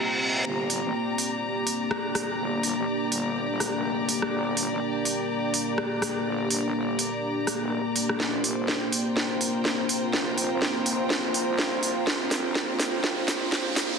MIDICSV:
0, 0, Header, 1, 7, 480
1, 0, Start_track
1, 0, Key_signature, -2, "minor"
1, 0, Tempo, 483871
1, 454, Time_signature, 4, 2, 24, 8
1, 13875, End_track
2, 0, Start_track
2, 0, Title_t, "String section"
2, 0, Program_c, 0, 48
2, 0, Note_on_c, 0, 65, 68
2, 0, Note_on_c, 0, 72, 69
2, 0, Note_on_c, 0, 79, 82
2, 0, Note_on_c, 0, 82, 81
2, 453, Note_on_c, 0, 67, 72
2, 559, Note_on_c, 0, 74, 71
2, 1091, Note_off_c, 0, 72, 0
2, 1164, Note_off_c, 0, 79, 0
2, 2046, Note_off_c, 0, 65, 0
2, 8132, Note_on_c, 0, 65, 80
2, 8134, Note_off_c, 0, 82, 0
2, 8244, Note_on_c, 0, 72, 83
2, 8641, Note_on_c, 0, 79, 72
2, 8940, Note_on_c, 0, 82, 73
2, 9132, Note_off_c, 0, 67, 0
2, 9709, Note_off_c, 0, 74, 0
2, 13875, Note_off_c, 0, 65, 0
2, 13875, Note_off_c, 0, 72, 0
2, 13875, Note_off_c, 0, 79, 0
2, 13875, Note_off_c, 0, 82, 0
2, 13875, End_track
3, 0, Start_track
3, 0, Title_t, "Ambient pad"
3, 0, Program_c, 1, 92
3, 0, Note_on_c, 1, 58, 80
3, 0, Note_on_c, 1, 60, 75
3, 0, Note_on_c, 1, 67, 72
3, 0, Note_on_c, 1, 72, 88
3, 414, Note_off_c, 1, 58, 0
3, 415, Note_off_c, 1, 60, 0
3, 415, Note_off_c, 1, 67, 0
3, 415, Note_off_c, 1, 72, 0
3, 453, Note_on_c, 1, 62, 76
3, 454, Note_on_c, 1, 58, 80
3, 454, Note_on_c, 1, 67, 74
3, 454, Note_on_c, 1, 74, 91
3, 8094, Note_off_c, 1, 62, 0
3, 8094, Note_off_c, 1, 67, 0
3, 8094, Note_off_c, 1, 74, 0
3, 8132, Note_on_c, 1, 65, 78
3, 8132, Note_on_c, 1, 72, 89
3, 8133, Note_on_c, 1, 60, 76
3, 13875, Note_off_c, 1, 58, 0
3, 13875, Note_off_c, 1, 60, 0
3, 13875, Note_off_c, 1, 65, 0
3, 13875, Note_off_c, 1, 72, 0
3, 13875, End_track
4, 0, Start_track
4, 0, Title_t, "FM bass"
4, 0, Program_c, 2, 39
4, 453, Note_on_c, 2, 31, 91
4, 677, Note_off_c, 2, 31, 0
4, 694, Note_on_c, 2, 31, 91
4, 808, Note_off_c, 2, 31, 0
4, 830, Note_on_c, 2, 33, 95
4, 917, Note_off_c, 2, 33, 0
4, 2373, Note_on_c, 2, 31, 92
4, 2597, Note_off_c, 2, 31, 0
4, 2613, Note_on_c, 2, 31, 93
4, 2728, Note_off_c, 2, 31, 0
4, 2749, Note_on_c, 2, 33, 99
4, 2837, Note_off_c, 2, 33, 0
4, 3093, Note_on_c, 2, 31, 98
4, 3448, Note_off_c, 2, 31, 0
4, 3469, Note_on_c, 2, 31, 92
4, 3688, Note_off_c, 2, 31, 0
4, 3710, Note_on_c, 2, 29, 95
4, 4168, Note_off_c, 2, 29, 0
4, 4293, Note_on_c, 2, 31, 96
4, 4517, Note_off_c, 2, 31, 0
4, 4533, Note_on_c, 2, 31, 91
4, 4648, Note_off_c, 2, 31, 0
4, 4669, Note_on_c, 2, 33, 96
4, 4757, Note_off_c, 2, 33, 0
4, 6213, Note_on_c, 2, 31, 94
4, 6437, Note_off_c, 2, 31, 0
4, 6453, Note_on_c, 2, 31, 93
4, 6568, Note_off_c, 2, 31, 0
4, 6589, Note_on_c, 2, 33, 97
4, 6677, Note_off_c, 2, 33, 0
4, 6692, Note_on_c, 2, 31, 99
4, 7048, Note_off_c, 2, 31, 0
4, 7549, Note_on_c, 2, 29, 95
4, 7768, Note_off_c, 2, 29, 0
4, 8133, Note_on_c, 2, 29, 95
4, 8357, Note_off_c, 2, 29, 0
4, 8373, Note_on_c, 2, 29, 91
4, 8488, Note_off_c, 2, 29, 0
4, 8510, Note_on_c, 2, 31, 101
4, 8597, Note_off_c, 2, 31, 0
4, 10053, Note_on_c, 2, 29, 97
4, 10277, Note_off_c, 2, 29, 0
4, 10293, Note_on_c, 2, 29, 94
4, 10408, Note_off_c, 2, 29, 0
4, 10430, Note_on_c, 2, 31, 99
4, 10517, Note_off_c, 2, 31, 0
4, 10773, Note_on_c, 2, 29, 96
4, 11128, Note_off_c, 2, 29, 0
4, 11150, Note_on_c, 2, 29, 93
4, 11368, Note_off_c, 2, 29, 0
4, 11390, Note_on_c, 2, 36, 100
4, 11848, Note_off_c, 2, 36, 0
4, 11974, Note_on_c, 2, 29, 95
4, 12197, Note_off_c, 2, 29, 0
4, 12350, Note_on_c, 2, 31, 99
4, 12437, Note_off_c, 2, 31, 0
4, 13875, End_track
5, 0, Start_track
5, 0, Title_t, "Reverse cymbal"
5, 0, Program_c, 3, 119
5, 0, Note_on_c, 3, 60, 76
5, 454, Note_off_c, 3, 60, 0
5, 13875, End_track
6, 0, Start_track
6, 0, Title_t, "Riser"
6, 0, Program_c, 4, 103
6, 8133, Note_on_c, 4, 60, 79
6, 13875, Note_off_c, 4, 60, 0
6, 13875, End_track
7, 0, Start_track
7, 0, Title_t, "Drums"
7, 694, Note_on_c, 9, 46, 100
7, 793, Note_off_c, 9, 46, 0
7, 1174, Note_on_c, 9, 46, 105
7, 1273, Note_off_c, 9, 46, 0
7, 1653, Note_on_c, 9, 46, 100
7, 1753, Note_off_c, 9, 46, 0
7, 1894, Note_on_c, 9, 37, 65
7, 1993, Note_off_c, 9, 37, 0
7, 2134, Note_on_c, 9, 37, 77
7, 2134, Note_on_c, 9, 46, 101
7, 2233, Note_off_c, 9, 37, 0
7, 2233, Note_off_c, 9, 46, 0
7, 2613, Note_on_c, 9, 46, 102
7, 2712, Note_off_c, 9, 46, 0
7, 3094, Note_on_c, 9, 46, 112
7, 3193, Note_off_c, 9, 46, 0
7, 3574, Note_on_c, 9, 37, 58
7, 3574, Note_on_c, 9, 46, 105
7, 3673, Note_off_c, 9, 37, 0
7, 3673, Note_off_c, 9, 46, 0
7, 4054, Note_on_c, 9, 46, 102
7, 4153, Note_off_c, 9, 46, 0
7, 4190, Note_on_c, 9, 37, 58
7, 4289, Note_off_c, 9, 37, 0
7, 4533, Note_on_c, 9, 46, 103
7, 4632, Note_off_c, 9, 46, 0
7, 5013, Note_on_c, 9, 46, 109
7, 5113, Note_off_c, 9, 46, 0
7, 5493, Note_on_c, 9, 46, 105
7, 5593, Note_off_c, 9, 46, 0
7, 5733, Note_on_c, 9, 37, 60
7, 5832, Note_off_c, 9, 37, 0
7, 5973, Note_on_c, 9, 37, 76
7, 5973, Note_on_c, 9, 46, 103
7, 6072, Note_off_c, 9, 37, 0
7, 6072, Note_off_c, 9, 46, 0
7, 6453, Note_on_c, 9, 46, 111
7, 6552, Note_off_c, 9, 46, 0
7, 6932, Note_on_c, 9, 46, 116
7, 7032, Note_off_c, 9, 46, 0
7, 7412, Note_on_c, 9, 37, 62
7, 7412, Note_on_c, 9, 46, 106
7, 7511, Note_off_c, 9, 37, 0
7, 7511, Note_off_c, 9, 46, 0
7, 7893, Note_on_c, 9, 46, 105
7, 7992, Note_off_c, 9, 46, 0
7, 8029, Note_on_c, 9, 37, 59
7, 8129, Note_off_c, 9, 37, 0
7, 8133, Note_on_c, 9, 38, 47
7, 8232, Note_off_c, 9, 38, 0
7, 8373, Note_on_c, 9, 46, 102
7, 8472, Note_off_c, 9, 46, 0
7, 8613, Note_on_c, 9, 38, 49
7, 8712, Note_off_c, 9, 38, 0
7, 8853, Note_on_c, 9, 46, 114
7, 8953, Note_off_c, 9, 46, 0
7, 9093, Note_on_c, 9, 38, 54
7, 9192, Note_off_c, 9, 38, 0
7, 9333, Note_on_c, 9, 46, 104
7, 9432, Note_off_c, 9, 46, 0
7, 9573, Note_on_c, 9, 38, 58
7, 9672, Note_off_c, 9, 38, 0
7, 9813, Note_on_c, 9, 46, 104
7, 9912, Note_off_c, 9, 46, 0
7, 10053, Note_on_c, 9, 38, 58
7, 10152, Note_off_c, 9, 38, 0
7, 10293, Note_on_c, 9, 46, 99
7, 10392, Note_off_c, 9, 46, 0
7, 10533, Note_on_c, 9, 38, 61
7, 10632, Note_off_c, 9, 38, 0
7, 10773, Note_on_c, 9, 46, 108
7, 10872, Note_off_c, 9, 46, 0
7, 11013, Note_on_c, 9, 38, 66
7, 11112, Note_off_c, 9, 38, 0
7, 11253, Note_on_c, 9, 46, 103
7, 11352, Note_off_c, 9, 46, 0
7, 11493, Note_on_c, 9, 38, 71
7, 11592, Note_off_c, 9, 38, 0
7, 11732, Note_on_c, 9, 46, 105
7, 11832, Note_off_c, 9, 46, 0
7, 11973, Note_on_c, 9, 38, 74
7, 12072, Note_off_c, 9, 38, 0
7, 12213, Note_on_c, 9, 38, 77
7, 12213, Note_on_c, 9, 46, 99
7, 12313, Note_off_c, 9, 38, 0
7, 12313, Note_off_c, 9, 46, 0
7, 12454, Note_on_c, 9, 38, 77
7, 12553, Note_off_c, 9, 38, 0
7, 12693, Note_on_c, 9, 38, 84
7, 12693, Note_on_c, 9, 46, 106
7, 12793, Note_off_c, 9, 38, 0
7, 12793, Note_off_c, 9, 46, 0
7, 12933, Note_on_c, 9, 38, 82
7, 13032, Note_off_c, 9, 38, 0
7, 13173, Note_on_c, 9, 38, 85
7, 13173, Note_on_c, 9, 46, 99
7, 13272, Note_off_c, 9, 38, 0
7, 13272, Note_off_c, 9, 46, 0
7, 13413, Note_on_c, 9, 38, 88
7, 13512, Note_off_c, 9, 38, 0
7, 13654, Note_on_c, 9, 38, 88
7, 13654, Note_on_c, 9, 46, 102
7, 13753, Note_off_c, 9, 38, 0
7, 13753, Note_off_c, 9, 46, 0
7, 13875, End_track
0, 0, End_of_file